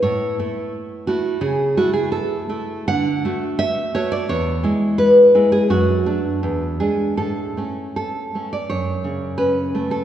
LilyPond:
\new Staff \with { instrumentName = "Nylon-string guitar" } { \time 2/4 \key a \major \tempo 4 = 85 << { cis''4. fis'8 | gis'8 fis'16 gis'16 a'4 | fis''4 e''8 cis''16 d''16 | cis''4 b'8. gis'16 |
fis'4. gis'8 | a'4 a'8. d''16 | \key fis \minor cis''4 b'8. a'16 | } \\ { a,8 <a e'>4 <a e'>8 | cis8 <a e'>4 <a e'>8 | d8 <a fis'>4 <a fis'>8 | e,8 <gis e'>4 <gis e'>8 |
fis,8 <a d'>8 e,8 <gis d'>8 | a,8 <a cis'>4 <a cis'>8 | fis,8 cis8 cis'8 a8 | } >> }